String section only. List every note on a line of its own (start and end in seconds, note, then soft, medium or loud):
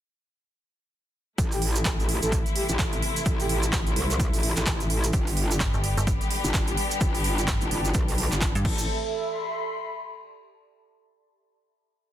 1.38 5.10 C3 medium
1.38 5.10 E3 medium
1.38 5.10 A3 medium
1.38 5.10 E4 medium
5.13 8.62 D3 medium
5.13 8.62 G3 medium
5.13 8.62 B3 medium
5.13 8.62 G4 medium
8.65 8.87 E3 medium
8.65 8.87 A3 medium
8.65 8.87 C4 medium
8.65 8.87 A4 medium